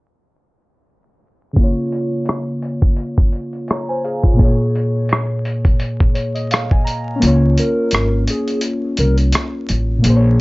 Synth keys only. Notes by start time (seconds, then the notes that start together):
1.53 C#3 A#3
1.60 F4 C#5
3.70 C#5 A#5
3.89 C5 G#5
4.04 G#4 F5
4.24 F4 C#5
4.33 A#2 A#3
4.40 G#4 C#5
6.15 C#5
6.35 D#5
6.51 F5
6.71 G#5
6.85 A#5
7.16 C#4
7.20 A#3 F4
7.27 C#5
9.98 A#2 A#3
10.06 G#4 C5
10.16 C#5